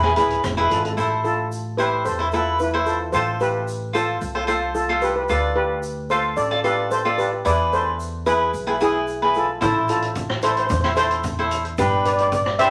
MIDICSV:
0, 0, Header, 1, 5, 480
1, 0, Start_track
1, 0, Key_signature, 0, "minor"
1, 0, Tempo, 540054
1, 869, Time_signature, 4, 2, 24, 8
1, 11290, End_track
2, 0, Start_track
2, 0, Title_t, "Cavaquinho"
2, 0, Program_c, 0, 24
2, 28, Note_on_c, 0, 71, 81
2, 32, Note_on_c, 0, 68, 61
2, 36, Note_on_c, 0, 64, 63
2, 103, Note_off_c, 0, 64, 0
2, 103, Note_off_c, 0, 68, 0
2, 103, Note_off_c, 0, 71, 0
2, 145, Note_on_c, 0, 71, 89
2, 148, Note_on_c, 0, 68, 68
2, 152, Note_on_c, 0, 64, 64
2, 365, Note_off_c, 0, 64, 0
2, 365, Note_off_c, 0, 68, 0
2, 365, Note_off_c, 0, 71, 0
2, 508, Note_on_c, 0, 64, 90
2, 513, Note_on_c, 0, 68, 70
2, 514, Note_on_c, 0, 71, 98
2, 726, Note_off_c, 0, 64, 0
2, 726, Note_off_c, 0, 68, 0
2, 729, Note_off_c, 0, 71, 0
2, 862, Note_on_c, 0, 64, 78
2, 866, Note_on_c, 0, 69, 71
2, 875, Note_on_c, 0, 72, 71
2, 1299, Note_off_c, 0, 64, 0
2, 1299, Note_off_c, 0, 69, 0
2, 1300, Note_off_c, 0, 72, 0
2, 1586, Note_on_c, 0, 64, 74
2, 1595, Note_on_c, 0, 69, 56
2, 1596, Note_on_c, 0, 72, 81
2, 1803, Note_off_c, 0, 64, 0
2, 1805, Note_off_c, 0, 69, 0
2, 1808, Note_off_c, 0, 72, 0
2, 1945, Note_on_c, 0, 72, 88
2, 1949, Note_on_c, 0, 69, 66
2, 1955, Note_on_c, 0, 64, 69
2, 2019, Note_off_c, 0, 69, 0
2, 2019, Note_off_c, 0, 72, 0
2, 2020, Note_off_c, 0, 64, 0
2, 2076, Note_on_c, 0, 64, 80
2, 2080, Note_on_c, 0, 69, 61
2, 2080, Note_on_c, 0, 71, 86
2, 2287, Note_off_c, 0, 69, 0
2, 2288, Note_off_c, 0, 64, 0
2, 2289, Note_off_c, 0, 71, 0
2, 2431, Note_on_c, 0, 64, 77
2, 2433, Note_on_c, 0, 69, 73
2, 2440, Note_on_c, 0, 72, 83
2, 2645, Note_off_c, 0, 64, 0
2, 2647, Note_off_c, 0, 69, 0
2, 2648, Note_off_c, 0, 72, 0
2, 2792, Note_on_c, 0, 65, 75
2, 2796, Note_on_c, 0, 69, 73
2, 2801, Note_on_c, 0, 72, 82
2, 3221, Note_off_c, 0, 65, 0
2, 3223, Note_off_c, 0, 72, 0
2, 3224, Note_off_c, 0, 69, 0
2, 3495, Note_on_c, 0, 65, 76
2, 3505, Note_on_c, 0, 69, 57
2, 3507, Note_on_c, 0, 72, 82
2, 3717, Note_off_c, 0, 65, 0
2, 3718, Note_off_c, 0, 69, 0
2, 3722, Note_off_c, 0, 72, 0
2, 3866, Note_on_c, 0, 72, 86
2, 3867, Note_on_c, 0, 69, 66
2, 3872, Note_on_c, 0, 65, 70
2, 3936, Note_off_c, 0, 69, 0
2, 3937, Note_off_c, 0, 65, 0
2, 3937, Note_off_c, 0, 72, 0
2, 3974, Note_on_c, 0, 65, 76
2, 3981, Note_on_c, 0, 69, 57
2, 3982, Note_on_c, 0, 72, 87
2, 4196, Note_off_c, 0, 65, 0
2, 4197, Note_off_c, 0, 69, 0
2, 4199, Note_off_c, 0, 72, 0
2, 4347, Note_on_c, 0, 65, 76
2, 4351, Note_on_c, 0, 69, 76
2, 4356, Note_on_c, 0, 72, 80
2, 4562, Note_off_c, 0, 65, 0
2, 4564, Note_off_c, 0, 69, 0
2, 4565, Note_off_c, 0, 72, 0
2, 4705, Note_on_c, 0, 65, 79
2, 4710, Note_on_c, 0, 69, 62
2, 4713, Note_on_c, 0, 74, 89
2, 5138, Note_off_c, 0, 65, 0
2, 5138, Note_off_c, 0, 69, 0
2, 5141, Note_off_c, 0, 74, 0
2, 5429, Note_on_c, 0, 65, 73
2, 5434, Note_on_c, 0, 77, 77
2, 5436, Note_on_c, 0, 69, 62
2, 5643, Note_off_c, 0, 65, 0
2, 5644, Note_off_c, 0, 69, 0
2, 5645, Note_off_c, 0, 77, 0
2, 5786, Note_on_c, 0, 74, 88
2, 5787, Note_on_c, 0, 69, 70
2, 5792, Note_on_c, 0, 65, 67
2, 5856, Note_off_c, 0, 65, 0
2, 5856, Note_off_c, 0, 69, 0
2, 5857, Note_off_c, 0, 74, 0
2, 5903, Note_on_c, 0, 65, 77
2, 5906, Note_on_c, 0, 69, 66
2, 5915, Note_on_c, 0, 74, 69
2, 6119, Note_off_c, 0, 65, 0
2, 6121, Note_off_c, 0, 69, 0
2, 6123, Note_off_c, 0, 74, 0
2, 6267, Note_on_c, 0, 65, 74
2, 6270, Note_on_c, 0, 69, 68
2, 6274, Note_on_c, 0, 74, 74
2, 6482, Note_off_c, 0, 65, 0
2, 6484, Note_off_c, 0, 69, 0
2, 6484, Note_off_c, 0, 74, 0
2, 6620, Note_on_c, 0, 64, 82
2, 6625, Note_on_c, 0, 71, 89
2, 6626, Note_on_c, 0, 68, 63
2, 7055, Note_off_c, 0, 64, 0
2, 7057, Note_off_c, 0, 68, 0
2, 7058, Note_off_c, 0, 71, 0
2, 7344, Note_on_c, 0, 64, 79
2, 7347, Note_on_c, 0, 68, 55
2, 7347, Note_on_c, 0, 71, 81
2, 7561, Note_off_c, 0, 68, 0
2, 7562, Note_off_c, 0, 64, 0
2, 7563, Note_off_c, 0, 71, 0
2, 7704, Note_on_c, 0, 64, 72
2, 7707, Note_on_c, 0, 68, 64
2, 7709, Note_on_c, 0, 71, 89
2, 7776, Note_off_c, 0, 68, 0
2, 7777, Note_off_c, 0, 64, 0
2, 7779, Note_off_c, 0, 71, 0
2, 7827, Note_on_c, 0, 64, 76
2, 7833, Note_on_c, 0, 68, 70
2, 7834, Note_on_c, 0, 71, 68
2, 8044, Note_off_c, 0, 64, 0
2, 8044, Note_off_c, 0, 71, 0
2, 8046, Note_off_c, 0, 68, 0
2, 8196, Note_on_c, 0, 71, 90
2, 8199, Note_on_c, 0, 68, 68
2, 8203, Note_on_c, 0, 64, 60
2, 8408, Note_off_c, 0, 64, 0
2, 8408, Note_off_c, 0, 68, 0
2, 8409, Note_off_c, 0, 71, 0
2, 8540, Note_on_c, 0, 64, 87
2, 8548, Note_on_c, 0, 69, 66
2, 8551, Note_on_c, 0, 72, 75
2, 8979, Note_off_c, 0, 64, 0
2, 8979, Note_off_c, 0, 72, 0
2, 8980, Note_off_c, 0, 69, 0
2, 9273, Note_on_c, 0, 64, 69
2, 9274, Note_on_c, 0, 69, 64
2, 9275, Note_on_c, 0, 72, 64
2, 9486, Note_off_c, 0, 72, 0
2, 9487, Note_off_c, 0, 64, 0
2, 9488, Note_off_c, 0, 69, 0
2, 9633, Note_on_c, 0, 64, 77
2, 9637, Note_on_c, 0, 69, 67
2, 9643, Note_on_c, 0, 72, 72
2, 9702, Note_off_c, 0, 64, 0
2, 9705, Note_off_c, 0, 69, 0
2, 9706, Note_off_c, 0, 72, 0
2, 9748, Note_on_c, 0, 64, 76
2, 9754, Note_on_c, 0, 69, 68
2, 9754, Note_on_c, 0, 72, 90
2, 9966, Note_off_c, 0, 64, 0
2, 9966, Note_off_c, 0, 69, 0
2, 9968, Note_off_c, 0, 72, 0
2, 10121, Note_on_c, 0, 64, 75
2, 10124, Note_on_c, 0, 69, 68
2, 10131, Note_on_c, 0, 72, 75
2, 10332, Note_off_c, 0, 64, 0
2, 10334, Note_off_c, 0, 69, 0
2, 10335, Note_off_c, 0, 72, 0
2, 10477, Note_on_c, 0, 62, 82
2, 10483, Note_on_c, 0, 67, 70
2, 10487, Note_on_c, 0, 71, 77
2, 10908, Note_off_c, 0, 62, 0
2, 10909, Note_off_c, 0, 67, 0
2, 10909, Note_off_c, 0, 71, 0
2, 11190, Note_on_c, 0, 62, 69
2, 11196, Note_on_c, 0, 67, 66
2, 11201, Note_on_c, 0, 71, 78
2, 11290, Note_off_c, 0, 62, 0
2, 11290, Note_off_c, 0, 67, 0
2, 11290, Note_off_c, 0, 71, 0
2, 11290, End_track
3, 0, Start_track
3, 0, Title_t, "Steel pan"
3, 0, Program_c, 1, 114
3, 0, Note_on_c, 1, 76, 71
3, 0, Note_on_c, 1, 80, 88
3, 150, Note_on_c, 1, 68, 86
3, 160, Note_on_c, 1, 64, 64
3, 591, Note_off_c, 1, 80, 0
3, 598, Note_off_c, 1, 76, 0
3, 601, Note_off_c, 1, 64, 0
3, 627, Note_on_c, 1, 69, 80
3, 638, Note_on_c, 1, 65, 67
3, 644, Note_off_c, 1, 68, 0
3, 683, Note_off_c, 1, 69, 0
3, 694, Note_on_c, 1, 69, 63
3, 698, Note_off_c, 1, 65, 0
3, 747, Note_off_c, 1, 69, 0
3, 758, Note_on_c, 1, 69, 69
3, 817, Note_off_c, 1, 69, 0
3, 828, Note_on_c, 1, 69, 61
3, 881, Note_off_c, 1, 69, 0
3, 891, Note_on_c, 1, 69, 72
3, 957, Note_off_c, 1, 69, 0
3, 967, Note_on_c, 1, 69, 62
3, 1027, Note_off_c, 1, 69, 0
3, 1105, Note_on_c, 1, 69, 86
3, 1114, Note_on_c, 1, 65, 67
3, 1557, Note_off_c, 1, 65, 0
3, 1577, Note_on_c, 1, 71, 90
3, 1588, Note_on_c, 1, 67, 74
3, 1600, Note_off_c, 1, 69, 0
3, 1810, Note_off_c, 1, 67, 0
3, 1822, Note_on_c, 1, 72, 89
3, 1828, Note_on_c, 1, 69, 72
3, 1829, Note_off_c, 1, 71, 0
3, 2050, Note_off_c, 1, 69, 0
3, 2071, Note_off_c, 1, 72, 0
3, 2072, Note_on_c, 1, 69, 87
3, 2081, Note_on_c, 1, 65, 64
3, 2297, Note_off_c, 1, 65, 0
3, 2310, Note_on_c, 1, 71, 89
3, 2316, Note_off_c, 1, 69, 0
3, 2316, Note_on_c, 1, 64, 71
3, 2534, Note_off_c, 1, 64, 0
3, 2546, Note_on_c, 1, 69, 87
3, 2553, Note_on_c, 1, 65, 66
3, 2555, Note_off_c, 1, 71, 0
3, 2770, Note_off_c, 1, 69, 0
3, 2772, Note_off_c, 1, 65, 0
3, 2777, Note_on_c, 1, 72, 96
3, 2781, Note_on_c, 1, 69, 76
3, 2887, Note_off_c, 1, 72, 0
3, 2890, Note_off_c, 1, 69, 0
3, 3030, Note_on_c, 1, 71, 98
3, 3034, Note_on_c, 1, 67, 70
3, 3475, Note_off_c, 1, 67, 0
3, 3508, Note_on_c, 1, 69, 95
3, 3512, Note_on_c, 1, 65, 77
3, 3521, Note_off_c, 1, 71, 0
3, 3954, Note_off_c, 1, 65, 0
3, 3976, Note_off_c, 1, 69, 0
3, 3987, Note_on_c, 1, 69, 85
3, 3992, Note_on_c, 1, 65, 73
3, 4208, Note_off_c, 1, 69, 0
3, 4211, Note_off_c, 1, 65, 0
3, 4221, Note_on_c, 1, 69, 92
3, 4226, Note_on_c, 1, 65, 69
3, 4448, Note_off_c, 1, 65, 0
3, 4461, Note_on_c, 1, 71, 94
3, 4468, Note_on_c, 1, 67, 75
3, 4469, Note_off_c, 1, 69, 0
3, 4513, Note_off_c, 1, 71, 0
3, 4524, Note_on_c, 1, 71, 71
3, 4529, Note_off_c, 1, 67, 0
3, 4574, Note_off_c, 1, 71, 0
3, 4585, Note_on_c, 1, 71, 80
3, 4639, Note_off_c, 1, 71, 0
3, 4649, Note_on_c, 1, 71, 71
3, 4702, Note_off_c, 1, 71, 0
3, 4713, Note_on_c, 1, 71, 79
3, 4780, Note_off_c, 1, 71, 0
3, 4790, Note_on_c, 1, 71, 69
3, 4862, Note_off_c, 1, 71, 0
3, 4938, Note_on_c, 1, 71, 96
3, 4944, Note_on_c, 1, 67, 73
3, 5390, Note_off_c, 1, 67, 0
3, 5423, Note_on_c, 1, 72, 100
3, 5426, Note_on_c, 1, 69, 78
3, 5435, Note_off_c, 1, 71, 0
3, 5646, Note_off_c, 1, 72, 0
3, 5648, Note_off_c, 1, 69, 0
3, 5659, Note_on_c, 1, 74, 101
3, 5664, Note_on_c, 1, 69, 80
3, 5887, Note_off_c, 1, 69, 0
3, 5903, Note_on_c, 1, 71, 99
3, 5905, Note_on_c, 1, 67, 77
3, 5908, Note_off_c, 1, 74, 0
3, 6127, Note_off_c, 1, 67, 0
3, 6143, Note_on_c, 1, 72, 97
3, 6147, Note_on_c, 1, 69, 73
3, 6151, Note_off_c, 1, 71, 0
3, 6251, Note_off_c, 1, 72, 0
3, 6254, Note_off_c, 1, 69, 0
3, 6380, Note_on_c, 1, 71, 91
3, 6388, Note_on_c, 1, 67, 75
3, 6609, Note_off_c, 1, 67, 0
3, 6626, Note_off_c, 1, 71, 0
3, 6630, Note_on_c, 1, 74, 106
3, 6637, Note_on_c, 1, 71, 79
3, 6854, Note_off_c, 1, 71, 0
3, 6872, Note_on_c, 1, 72, 99
3, 6874, Note_off_c, 1, 74, 0
3, 6874, Note_on_c, 1, 69, 77
3, 7316, Note_off_c, 1, 69, 0
3, 7346, Note_on_c, 1, 71, 106
3, 7347, Note_on_c, 1, 68, 77
3, 7363, Note_off_c, 1, 72, 0
3, 7793, Note_off_c, 1, 68, 0
3, 7839, Note_on_c, 1, 64, 76
3, 7839, Note_on_c, 1, 68, 101
3, 7840, Note_off_c, 1, 71, 0
3, 8280, Note_off_c, 1, 64, 0
3, 8322, Note_on_c, 1, 69, 88
3, 8327, Note_off_c, 1, 68, 0
3, 8327, Note_on_c, 1, 65, 70
3, 8541, Note_off_c, 1, 65, 0
3, 8554, Note_off_c, 1, 69, 0
3, 8564, Note_on_c, 1, 69, 100
3, 8565, Note_on_c, 1, 64, 78
3, 8669, Note_off_c, 1, 64, 0
3, 8669, Note_off_c, 1, 69, 0
3, 8797, Note_on_c, 1, 69, 96
3, 8798, Note_on_c, 1, 65, 74
3, 9240, Note_off_c, 1, 65, 0
3, 9267, Note_off_c, 1, 69, 0
3, 9271, Note_on_c, 1, 72, 104
3, 9277, Note_on_c, 1, 69, 82
3, 9336, Note_off_c, 1, 69, 0
3, 9340, Note_off_c, 1, 72, 0
3, 9352, Note_on_c, 1, 72, 75
3, 9403, Note_off_c, 1, 72, 0
3, 9414, Note_on_c, 1, 72, 87
3, 9470, Note_off_c, 1, 72, 0
3, 9480, Note_on_c, 1, 72, 78
3, 9532, Note_off_c, 1, 72, 0
3, 9543, Note_on_c, 1, 72, 78
3, 9595, Note_off_c, 1, 72, 0
3, 9606, Note_on_c, 1, 72, 69
3, 9673, Note_off_c, 1, 72, 0
3, 9747, Note_on_c, 1, 72, 113
3, 9750, Note_on_c, 1, 69, 84
3, 10435, Note_off_c, 1, 69, 0
3, 10476, Note_on_c, 1, 71, 105
3, 10478, Note_on_c, 1, 67, 80
3, 10490, Note_off_c, 1, 72, 0
3, 10583, Note_off_c, 1, 71, 0
3, 10584, Note_off_c, 1, 67, 0
3, 10717, Note_on_c, 1, 74, 100
3, 10719, Note_on_c, 1, 71, 78
3, 10778, Note_off_c, 1, 71, 0
3, 10779, Note_off_c, 1, 74, 0
3, 10789, Note_on_c, 1, 74, 76
3, 10841, Note_off_c, 1, 74, 0
3, 10852, Note_on_c, 1, 74, 91
3, 10899, Note_off_c, 1, 74, 0
3, 10909, Note_on_c, 1, 74, 82
3, 10965, Note_off_c, 1, 74, 0
3, 10976, Note_on_c, 1, 74, 86
3, 11047, Note_off_c, 1, 74, 0
3, 11059, Note_on_c, 1, 74, 78
3, 11120, Note_off_c, 1, 74, 0
3, 11188, Note_on_c, 1, 76, 114
3, 11196, Note_on_c, 1, 72, 94
3, 11290, Note_off_c, 1, 72, 0
3, 11290, Note_off_c, 1, 76, 0
3, 11290, End_track
4, 0, Start_track
4, 0, Title_t, "Upright bass"
4, 0, Program_c, 2, 32
4, 0, Note_on_c, 2, 40, 99
4, 134, Note_off_c, 2, 40, 0
4, 149, Note_on_c, 2, 26, 84
4, 366, Note_off_c, 2, 26, 0
4, 393, Note_on_c, 2, 28, 82
4, 607, Note_off_c, 2, 28, 0
4, 635, Note_on_c, 2, 32, 85
4, 848, Note_off_c, 2, 32, 0
4, 866, Note_on_c, 2, 33, 108
4, 1790, Note_off_c, 2, 33, 0
4, 1827, Note_on_c, 2, 40, 97
4, 2749, Note_off_c, 2, 40, 0
4, 2788, Note_on_c, 2, 33, 102
4, 3709, Note_off_c, 2, 33, 0
4, 3746, Note_on_c, 2, 36, 97
4, 4669, Note_off_c, 2, 36, 0
4, 4705, Note_on_c, 2, 38, 104
4, 5628, Note_off_c, 2, 38, 0
4, 5666, Note_on_c, 2, 33, 94
4, 6590, Note_off_c, 2, 33, 0
4, 6627, Note_on_c, 2, 40, 105
4, 7551, Note_off_c, 2, 40, 0
4, 7589, Note_on_c, 2, 35, 96
4, 8513, Note_off_c, 2, 35, 0
4, 8551, Note_on_c, 2, 33, 102
4, 9475, Note_off_c, 2, 33, 0
4, 9510, Note_on_c, 2, 40, 102
4, 10435, Note_off_c, 2, 40, 0
4, 10476, Note_on_c, 2, 31, 99
4, 11290, Note_off_c, 2, 31, 0
4, 11290, End_track
5, 0, Start_track
5, 0, Title_t, "Drums"
5, 29, Note_on_c, 9, 37, 86
5, 118, Note_off_c, 9, 37, 0
5, 142, Note_on_c, 9, 42, 87
5, 149, Note_on_c, 9, 82, 66
5, 231, Note_off_c, 9, 42, 0
5, 238, Note_off_c, 9, 82, 0
5, 270, Note_on_c, 9, 42, 71
5, 359, Note_off_c, 9, 42, 0
5, 388, Note_on_c, 9, 37, 80
5, 388, Note_on_c, 9, 42, 69
5, 388, Note_on_c, 9, 82, 91
5, 391, Note_on_c, 9, 36, 87
5, 477, Note_off_c, 9, 37, 0
5, 477, Note_off_c, 9, 42, 0
5, 477, Note_off_c, 9, 82, 0
5, 480, Note_off_c, 9, 36, 0
5, 626, Note_on_c, 9, 82, 71
5, 633, Note_on_c, 9, 42, 87
5, 714, Note_off_c, 9, 82, 0
5, 722, Note_off_c, 9, 42, 0
5, 754, Note_on_c, 9, 42, 75
5, 843, Note_off_c, 9, 42, 0
5, 866, Note_on_c, 9, 82, 94
5, 954, Note_off_c, 9, 82, 0
5, 1107, Note_on_c, 9, 82, 67
5, 1196, Note_off_c, 9, 82, 0
5, 1348, Note_on_c, 9, 82, 94
5, 1437, Note_off_c, 9, 82, 0
5, 1586, Note_on_c, 9, 82, 73
5, 1675, Note_off_c, 9, 82, 0
5, 1824, Note_on_c, 9, 82, 90
5, 1913, Note_off_c, 9, 82, 0
5, 2058, Note_on_c, 9, 82, 71
5, 2147, Note_off_c, 9, 82, 0
5, 2302, Note_on_c, 9, 82, 92
5, 2391, Note_off_c, 9, 82, 0
5, 2542, Note_on_c, 9, 82, 77
5, 2630, Note_off_c, 9, 82, 0
5, 2781, Note_on_c, 9, 82, 97
5, 2870, Note_off_c, 9, 82, 0
5, 3024, Note_on_c, 9, 82, 74
5, 3113, Note_off_c, 9, 82, 0
5, 3266, Note_on_c, 9, 82, 99
5, 3355, Note_off_c, 9, 82, 0
5, 3506, Note_on_c, 9, 82, 79
5, 3595, Note_off_c, 9, 82, 0
5, 3743, Note_on_c, 9, 82, 97
5, 3832, Note_off_c, 9, 82, 0
5, 3982, Note_on_c, 9, 82, 74
5, 4071, Note_off_c, 9, 82, 0
5, 4221, Note_on_c, 9, 82, 97
5, 4310, Note_off_c, 9, 82, 0
5, 4457, Note_on_c, 9, 82, 74
5, 4546, Note_off_c, 9, 82, 0
5, 4697, Note_on_c, 9, 82, 96
5, 4786, Note_off_c, 9, 82, 0
5, 5179, Note_on_c, 9, 82, 98
5, 5267, Note_off_c, 9, 82, 0
5, 5419, Note_on_c, 9, 82, 74
5, 5508, Note_off_c, 9, 82, 0
5, 5660, Note_on_c, 9, 82, 92
5, 5749, Note_off_c, 9, 82, 0
5, 5903, Note_on_c, 9, 82, 76
5, 5992, Note_off_c, 9, 82, 0
5, 6141, Note_on_c, 9, 82, 102
5, 6230, Note_off_c, 9, 82, 0
5, 6385, Note_on_c, 9, 82, 78
5, 6474, Note_off_c, 9, 82, 0
5, 6624, Note_on_c, 9, 82, 104
5, 6713, Note_off_c, 9, 82, 0
5, 6868, Note_on_c, 9, 82, 79
5, 6957, Note_off_c, 9, 82, 0
5, 7107, Note_on_c, 9, 82, 104
5, 7196, Note_off_c, 9, 82, 0
5, 7345, Note_on_c, 9, 82, 80
5, 7433, Note_off_c, 9, 82, 0
5, 7585, Note_on_c, 9, 82, 91
5, 7674, Note_off_c, 9, 82, 0
5, 7824, Note_on_c, 9, 82, 78
5, 7913, Note_off_c, 9, 82, 0
5, 8063, Note_on_c, 9, 82, 93
5, 8152, Note_off_c, 9, 82, 0
5, 8304, Note_on_c, 9, 82, 75
5, 8393, Note_off_c, 9, 82, 0
5, 8546, Note_on_c, 9, 82, 90
5, 8547, Note_on_c, 9, 42, 70
5, 8549, Note_on_c, 9, 36, 123
5, 8635, Note_off_c, 9, 82, 0
5, 8636, Note_off_c, 9, 42, 0
5, 8638, Note_off_c, 9, 36, 0
5, 8784, Note_on_c, 9, 82, 71
5, 8790, Note_on_c, 9, 42, 91
5, 8873, Note_off_c, 9, 82, 0
5, 8879, Note_off_c, 9, 42, 0
5, 8909, Note_on_c, 9, 42, 75
5, 8998, Note_off_c, 9, 42, 0
5, 9023, Note_on_c, 9, 42, 67
5, 9025, Note_on_c, 9, 82, 100
5, 9028, Note_on_c, 9, 36, 85
5, 9112, Note_off_c, 9, 42, 0
5, 9114, Note_off_c, 9, 82, 0
5, 9117, Note_off_c, 9, 36, 0
5, 9151, Note_on_c, 9, 37, 95
5, 9240, Note_off_c, 9, 37, 0
5, 9262, Note_on_c, 9, 82, 78
5, 9266, Note_on_c, 9, 42, 92
5, 9351, Note_off_c, 9, 82, 0
5, 9354, Note_off_c, 9, 42, 0
5, 9392, Note_on_c, 9, 42, 69
5, 9481, Note_off_c, 9, 42, 0
5, 9502, Note_on_c, 9, 82, 101
5, 9509, Note_on_c, 9, 42, 69
5, 9510, Note_on_c, 9, 36, 115
5, 9591, Note_off_c, 9, 82, 0
5, 9598, Note_off_c, 9, 42, 0
5, 9599, Note_off_c, 9, 36, 0
5, 9634, Note_on_c, 9, 37, 86
5, 9723, Note_off_c, 9, 37, 0
5, 9742, Note_on_c, 9, 82, 78
5, 9751, Note_on_c, 9, 42, 86
5, 9831, Note_off_c, 9, 82, 0
5, 9840, Note_off_c, 9, 42, 0
5, 9872, Note_on_c, 9, 42, 68
5, 9961, Note_off_c, 9, 42, 0
5, 9985, Note_on_c, 9, 42, 67
5, 9986, Note_on_c, 9, 82, 101
5, 9991, Note_on_c, 9, 36, 92
5, 10074, Note_off_c, 9, 42, 0
5, 10075, Note_off_c, 9, 82, 0
5, 10080, Note_off_c, 9, 36, 0
5, 10229, Note_on_c, 9, 82, 83
5, 10231, Note_on_c, 9, 42, 86
5, 10318, Note_off_c, 9, 82, 0
5, 10320, Note_off_c, 9, 42, 0
5, 10353, Note_on_c, 9, 42, 67
5, 10442, Note_off_c, 9, 42, 0
5, 10467, Note_on_c, 9, 82, 106
5, 10472, Note_on_c, 9, 42, 64
5, 10473, Note_on_c, 9, 36, 121
5, 10556, Note_off_c, 9, 82, 0
5, 10561, Note_off_c, 9, 42, 0
5, 10562, Note_off_c, 9, 36, 0
5, 10713, Note_on_c, 9, 42, 85
5, 10713, Note_on_c, 9, 82, 79
5, 10801, Note_off_c, 9, 42, 0
5, 10801, Note_off_c, 9, 82, 0
5, 10830, Note_on_c, 9, 42, 66
5, 10919, Note_off_c, 9, 42, 0
5, 10947, Note_on_c, 9, 42, 64
5, 10951, Note_on_c, 9, 36, 88
5, 10951, Note_on_c, 9, 82, 112
5, 11036, Note_off_c, 9, 42, 0
5, 11040, Note_off_c, 9, 36, 0
5, 11040, Note_off_c, 9, 82, 0
5, 11074, Note_on_c, 9, 37, 96
5, 11163, Note_off_c, 9, 37, 0
5, 11190, Note_on_c, 9, 82, 83
5, 11191, Note_on_c, 9, 42, 88
5, 11279, Note_off_c, 9, 82, 0
5, 11280, Note_off_c, 9, 42, 0
5, 11290, End_track
0, 0, End_of_file